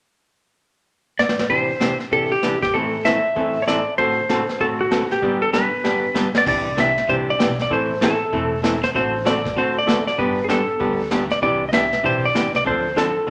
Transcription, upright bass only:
6.47 6.96 C2 medium
7.09 7.35 C2 medium
7.40 7.66 B1 medium
7.71 8.20 A1 medium
8.33 8.82 E1 medium
8.95 9.44 A1 medium
9.57 10.07 D2 medium
10.19 10.68 G1 medium
10.81 11.30 D2 medium
11.43 11.92 C2 medium
12.04 12.31 B1 medium
12.35 12.62 C2 medium
12.66 13.16 D2 medium

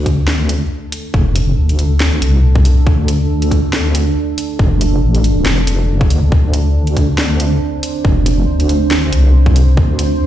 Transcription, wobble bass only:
0.00 0.69 D2 loud
1.14 1.56 F1 loud
1.58 2.21 D2 medium
2.22 2.85 C2 loud
2.87 4.15 D2 medium
4.59 5.01 F1 loud
5.03 5.44 A1 loud
5.46 6.09 F1 medium
6.11 6.31 D2 medium
6.32 7.60 D2 loud
8.05 8.46 F1 loud
8.48 9.11 D2 medium
9.13 9.76 C2 medium
9.77 10.27 D2 loud

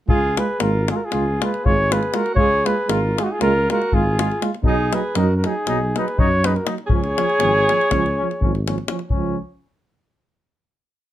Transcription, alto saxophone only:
0.09 0.40 F4 loud
0.38 0.64 G#4 medium
0.62 0.90 F4 medium
0.90 0.97 F4 medium
0.95 1.05 F#4 medium
1.04 1.45 F4 medium
1.43 1.67 G#4 medium
1.67 1.93 G#4 medium
1.93 2.19 G#4 medium
2.17 2.38 F#4 medium
2.39 2.70 G#4 loud
2.70 2.93 G#4 medium
2.92 3.22 F4 medium
3.22 3.33 D#4 medium
3.22 3.26 F4 medium
3.32 3.42 F4 medium
3.43 3.69 F4 medium
3.72 3.96 F#4 medium
3.94 4.47 F4 medium
4.67 4.96 D#4 medium
4.94 5.20 G#4 medium
5.18 5.36 F#4 medium
5.36 5.47 F#4 medium
5.45 5.98 D#4 medium
5.97 6.20 G#4 medium
6.19 6.45 F#4 medium
6.44 6.57 G#4 medium
6.55 6.66 F#4 medium
6.87 8.63 G#4 loud

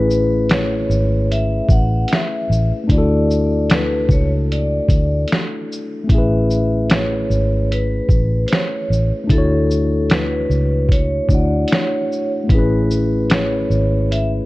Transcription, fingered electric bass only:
0.00 0.85 A1 medium
0.89 1.60 G#1 medium
1.69 2.04 A1 medium
2.50 2.70 A1 medium
2.89 4.05 D2 medium
4.09 4.79 C#2 medium
4.89 5.24 D2 medium
6.09 7.25 A1 medium
7.30 8.00 G#1 medium
8.09 8.44 A1 medium
8.90 9.11 A1 medium
9.30 10.46 D2 loud
10.50 11.20 C#2 medium
11.29 11.64 D2 medium
12.50 13.66 A1 medium
13.70 14.40 G#1 medium

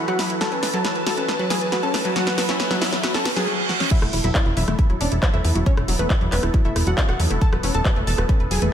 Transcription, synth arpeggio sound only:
0.08 0.16 F#3 loud
0.19 0.27 F#3 medium
0.41 0.46 F#4 medium
0.52 0.60 C#4 medium
0.73 0.82 F#3 loud
0.84 0.93 F#3 medium
1.06 1.12 F#4 medium
1.17 1.26 C#4 medium
1.39 1.48 F#3 loud
1.50 1.58 F#3 medium
1.72 1.78 F#4 medium
1.83 1.91 C#4 medium
2.05 2.13 F#3 loud
2.16 2.24 F#3 medium
2.38 2.43 F#4 medium
2.49 2.57 C#4 medium
2.70 2.79 F#3 loud
2.81 2.90 F#3 medium
3.03 3.09 F#4 medium
3.14 3.23 C#4 medium
3.36 3.45 F#3 loud
3.47 3.56 F#3 medium
3.69 3.75 F#4 medium
3.80 3.88 C#4 medium
3.91 3.94 F#3 medium
4.02 4.08 A3 medium
4.24 4.29 F#3 medium
4.35 4.43 C#4 medium
4.57 4.60 F#3 medium
4.68 4.73 A3 medium
4.90 4.95 F#3 medium
5.01 5.09 C#4 medium
5.22 5.26 F#3 medium
5.33 5.39 A3 medium
5.55 5.61 F#3 medium
5.66 5.75 C#4 medium
5.88 5.92 F#3 medium
5.99 6.05 A3 medium
6.21 6.27 F#3 medium
6.32 6.40 C#4 medium
6.54 6.57 F#3 medium
6.65 6.70 A3 medium
6.87 6.92 F#3 medium
6.98 7.06 C#4 medium
7.19 7.23 F#3 medium
7.30 7.36 A3 medium
7.52 7.58 F#3 medium
7.63 7.72 C#4 medium
7.85 7.89 F#3 medium
7.96 8.02 A3 medium
8.18 8.24 F#3 medium
8.29 8.37 C#4 medium
8.51 8.54 F#3 medium
8.62 8.67 A3 medium

